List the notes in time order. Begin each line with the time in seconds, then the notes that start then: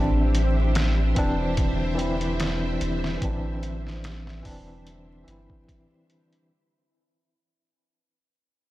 Already playing: A1 E3 C4 D4 E4 G4 C5 E5
0.35 closed hi-hat
0.75 snare, closed hi-hat
1.15 E3 C4 D4, kick, closed hi-hat
1.57 kick, closed hi-hat
1.95 E3 C4
1.99 E4, closed hi-hat
2.21 closed hi-hat
2.40 snare, closed hi-hat
2.81 E1, closed hi-hat
3.04 snare
3.18 E3 C4
3.22 A1 D4, kick, closed hi-hat
3.63 closed hi-hat
3.87 snare
4.04 snare, closed hi-hat
4.27 snare
4.42 E3 C4 D4, kick, open hi-hat
4.87 closed hi-hat
5.24 G1 E3 C4
5.28 E4, closed hi-hat
5.50 kick
5.69 kick, closed hi-hat
6.10 closed hi-hat
6.33 closed hi-hat